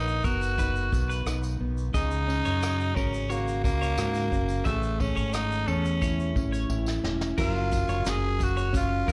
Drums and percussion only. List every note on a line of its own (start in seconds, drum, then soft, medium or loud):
0.08 shaker soft
0.24 kick medium
0.24 tambourine soft
0.24 shaker soft
0.42 tambourine soft
0.42 shaker medium
0.58 kick medium
0.58 tambourine soft
0.58 shaker medium
0.76 shaker soft
0.93 kick medium
0.93 tambourine soft
0.93 shaker medium
1.10 tambourine soft
1.10 shaker medium
1.26 cross-stick loud
1.26 tambourine medium
1.26 shaker medium
1.43 tambourine soft
1.43 shaker soft
1.78 shaker soft
1.94 kick medium
1.94 tambourine soft
1.94 shaker medium
2.11 shaker soft
2.30 tambourine soft
2.45 tambourine soft
2.45 shaker soft
2.62 cross-stick loud
2.62 tambourine medium
2.62 shaker medium
2.80 shaker soft
2.96 kick medium
2.96 tambourine soft
3.14 shaker medium
3.30 tambourine soft
3.30 shaker medium
3.48 shaker soft
3.64 kick medium
3.64 tambourine soft
3.64 shaker medium
3.82 tambourine soft
3.82 shaker medium
3.98 cross-stick loud
3.98 tambourine medium
3.98 shaker medium
4.14 tambourine soft
4.14 shaker soft
4.32 kick medium
4.32 shaker soft
4.49 tambourine soft
4.49 shaker soft
4.65 kick loud
4.65 tambourine soft
4.65 shaker medium
4.82 shaker soft
5.00 kick medium
5.00 tambourine soft
5.17 shaker soft
5.33 cross-stick loud
5.33 tambourine medium
5.33 shaker medium
5.52 shaker soft
5.68 tambourine soft
5.85 cross-stick soft
5.85 shaker medium
6.02 kick medium
6.02 tambourine soft
6.02 shaker medium
6.19 shaker soft
6.36 kick medium
6.36 tambourine soft
6.54 tambourine soft
6.54 shaker medium
6.70 tambourine medium
6.86 snare medium
6.86 tambourine soft
7.04 snare medium
7.21 snare medium
7.21 tambourine soft
7.38 kick loud
7.38 crash medium
7.38 tambourine soft
7.72 kick medium
7.72 tambourine soft
7.72 shaker medium
7.89 tambourine soft
7.89 shaker soft
8.05 snare loud
8.05 tambourine medium
8.05 shaker medium
8.40 kick medium
8.40 tambourine soft
8.40 shaker medium
8.57 shaker medium
8.74 kick loud
8.74 tambourine soft
8.74 shaker medium
9.08 kick medium
9.08 shaker medium